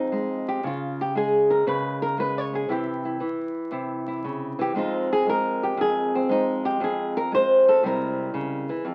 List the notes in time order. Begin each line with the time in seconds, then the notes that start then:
Already playing: F2 G#3 C4 D#4
0.12 G#3
0.48 G4
0.64 C#3 F4
1.01 G4
1.15 G#3 G#4
1.50 A#4
1.67 C#3 B4
2.02 A#4
2.18 G#3 B4
2.38 C#5
2.53 C#4 G#4
2.69 C3 E3 E4 G4
3.05 E4
3.20 E3
3.71 C3 E4
4.08 E4
4.24 C#3
4.59 E3 G4
4.75 F2 G#3 C4 D#4 F4
5.13 G#4
5.27 G#3 A#4
5.63 G4
5.77 F2 G#4
6.15 C4
6.29 G#3 D#4
6.65 G4
6.80 F2 G#4
7.17 A#4
7.32 G#3 C5
7.68 A4
7.83 C3 G3 G#3 E4 A#4
8.34 C#3
8.69 E3
8.85 F2